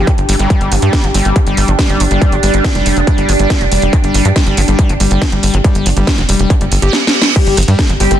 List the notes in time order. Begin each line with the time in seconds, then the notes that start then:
Already playing: D4 G4 G5
0.07 G3, kick, closed hi-hat
0.18 G1, closed hi-hat
0.29 G1 G3, open hi-hat
0.39 G1 G3, closed hi-hat
0.50 G3 D4, kick, closed hi-hat
0.61 G1, closed hi-hat
0.72 G1 F3, open hi-hat
0.82 G2 G3, closed hi-hat
0.93 kick, snare, closed hi-hat
1.04 G1 F3, closed hi-hat
1.14 G1 G3 C4, open hi-hat
1.25 G1 C4, closed hi-hat
1.36 F3, kick, closed hi-hat
1.47 G1 G3, closed hi-hat
1.57 G1, open hi-hat
1.68 G1 F3, closed hi-hat
1.79 G3, kick, snare, closed hi-hat
1.89 G1, closed hi-hat
2.00 G1 F3, open hi-hat
2.11 G1 G3, closed hi-hat
2.22 kick, closed hi-hat
2.32 G1 F3, closed hi-hat
2.43 G1 G3, open hi-hat
2.54 G1, closed hi-hat
2.64 F3, kick, snare, closed hi-hat
2.75 F1 G3, snare, closed hi-hat
2.86 F1, open hi-hat
2.97 F1 F3, closed hi-hat
3.07 G3, kick, closed hi-hat
3.18 G1, closed hi-hat
3.29 G1 F3, open hi-hat
3.39 G1 G3, closed hi-hat
3.50 kick, snare, closed hi-hat
3.61 F1 F3, closed hi-hat
3.72 F1 G3, open hi-hat
3.82 F1, closed hi-hat
3.93 F3, kick, closed hi-hat
4.04 G1 G3, closed hi-hat
4.14 G1, open hi-hat
4.25 G2 F3, closed hi-hat
4.36 G3, kick, snare, closed hi-hat
4.47 G1, closed hi-hat
4.57 G1 F3, open hi-hat
4.68 G1 G3, closed hi-hat
4.79 kick, closed hi-hat
4.89 G1 F3, closed hi-hat
5.00 G1 G3, open hi-hat
5.11 G1, closed hi-hat
5.22 F3, kick, snare, closed hi-hat
5.32 G1 G3, closed hi-hat
5.43 G1, open hi-hat
5.54 G1 F3, closed hi-hat
5.64 G3, kick, closed hi-hat
5.75 G1, closed hi-hat
5.86 G1 F3, open hi-hat
5.97 G1 G3, closed hi-hat
6.07 kick, snare, closed hi-hat
6.18 F1 F3, snare, closed hi-hat
6.29 F1 G3, open hi-hat
6.39 F1, closed hi-hat
6.50 F3, kick, closed hi-hat, reverse cymbal
6.61 G1 G3, closed hi-hat
6.72 G1, open hi-hat
6.82 G1 G4, closed hi-hat
6.93 snare
7.07 snare
7.22 snare
7.36 G3 G4, kick, closed hi-hat, crash
7.47 G1, closed hi-hat
7.57 G1 F3, cross-stick, open hi-hat
7.63 closed hi-hat
7.68 G2 G3, closed hi-hat
7.79 kick, cross-stick, snare, closed hi-hat
7.89 G1 F3, closed hi-hat
8.00 G1 G3 C4 G4, open hi-hat
8.11 G1 C4, cross-stick, closed hi-hat